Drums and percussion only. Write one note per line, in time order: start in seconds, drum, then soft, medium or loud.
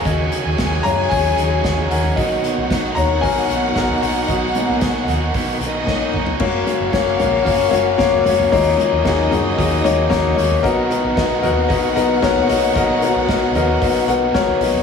0.05 kick loud
0.05 hi-hat pedal medium
0.05 open hi-hat medium
0.32 hi-hat pedal medium
0.32 open hi-hat medium
0.58 kick loud
0.58 snare loud
0.58 hi-hat pedal medium
0.58 open hi-hat medium
0.85 floor tom medium
0.85 hi-hat pedal medium
0.85 open hi-hat medium
1.11 kick loud
1.11 hi-hat pedal medium
1.11 open hi-hat loud
1.37 hi-hat pedal medium
1.37 open hi-hat medium
1.64 kick loud
1.64 snare loud
1.64 hi-hat pedal medium
1.64 open hi-hat medium
1.77 floor tom medium
1.91 hi-hat pedal medium
1.91 open hi-hat medium
2.04 floor tom medium
2.17 kick loud
2.17 hi-hat pedal medium
2.17 open hi-hat medium
2.44 hi-hat pedal medium
2.44 open hi-hat medium
2.70 kick loud
2.70 snare loud
2.70 hi-hat pedal medium
2.70 open hi-hat loud
2.96 floor tom medium
2.96 hi-hat pedal medium
2.96 open hi-hat medium
3.23 kick loud
3.23 hi-hat pedal medium
3.23 open hi-hat loud
3.49 hi-hat pedal medium
3.49 open hi-hat medium
3.76 kick loud
3.76 snare medium
3.76 hi-hat pedal medium
3.76 open hi-hat medium
3.89 floor tom medium
4.02 hi-hat pedal medium
4.02 open hi-hat medium
4.28 kick loud
4.28 hi-hat pedal medium
4.28 open hi-hat medium
4.55 hi-hat pedal medium
4.55 open hi-hat medium
4.81 kick loud
4.81 snare loud
4.81 hi-hat pedal medium
4.81 open hi-hat medium
5.08 floor tom medium
5.08 hi-hat pedal medium
5.08 open hi-hat medium
5.34 kick loud
5.34 hi-hat pedal medium
5.34 open hi-hat medium
5.61 hi-hat pedal medium
5.61 open hi-hat medium
5.87 kick medium
5.87 snare medium
6.14 mid tom medium
6.26 floor tom loud
6.40 kick loud
6.40 crash loud
6.67 hi-hat pedal medium
6.67 open hi-hat medium
6.93 kick loud
6.93 snare loud
6.93 hi-hat pedal medium
6.93 open hi-hat medium
7.19 floor tom medium
7.19 hi-hat pedal medium
7.19 open hi-hat medium
7.46 kick loud
7.46 hi-hat pedal medium
7.46 open hi-hat medium
7.73 hi-hat pedal medium
7.73 open hi-hat medium
7.99 kick loud
7.99 snare loud
7.99 hi-hat pedal medium
7.99 open hi-hat medium
8.12 floor tom medium
8.26 hi-hat pedal medium
8.26 open hi-hat medium
8.39 floor tom medium
8.52 kick loud
8.52 hi-hat pedal medium
8.52 open hi-hat medium
8.79 hi-hat pedal medium
8.79 open hi-hat medium
9.05 kick loud
9.05 snare loud
9.05 hi-hat pedal medium
9.05 open hi-hat loud
9.32 floor tom medium
9.32 hi-hat pedal medium
9.32 open hi-hat medium
9.59 kick loud
9.59 hi-hat pedal medium
9.59 open hi-hat medium
9.85 hi-hat pedal medium
9.85 open hi-hat medium
10.11 kick loud
10.11 snare loud
10.11 hi-hat pedal medium
10.11 open hi-hat medium
10.24 floor tom medium
10.38 hi-hat pedal medium
10.38 open hi-hat medium
10.51 floor tom medium
10.64 kick loud
10.64 hi-hat pedal medium
10.64 open hi-hat medium
10.91 hi-hat pedal medium
10.91 open hi-hat medium
11.17 kick loud
11.17 snare loud
11.17 hi-hat pedal medium
11.17 open hi-hat loud
11.43 floor tom medium
11.43 hi-hat pedal medium
11.43 open hi-hat medium
11.70 kick loud
11.70 hi-hat pedal medium
11.70 open hi-hat loud
11.97 hi-hat pedal medium
11.97 open hi-hat medium
12.22 kick loud
12.22 snare medium
12.22 hi-hat pedal medium
12.22 open hi-hat medium
12.36 floor tom medium
12.49 hi-hat pedal medium
12.49 open hi-hat medium
12.75 kick loud
12.75 hi-hat pedal medium
12.75 open hi-hat loud
13.02 hi-hat pedal medium
13.02 open hi-hat medium
13.29 kick loud
13.29 snare loud
13.29 hi-hat pedal medium
13.29 open hi-hat medium
13.55 floor tom medium
13.55 hi-hat pedal medium
13.55 open hi-hat medium
13.82 kick loud
13.82 hi-hat pedal medium
13.82 open hi-hat loud
14.08 hi-hat pedal medium
14.08 open hi-hat medium
14.34 kick loud
14.34 snare loud
14.34 hi-hat pedal medium
14.34 open hi-hat medium
14.48 floor tom medium
14.61 hi-hat pedal medium
14.61 open hi-hat medium
14.74 floor tom medium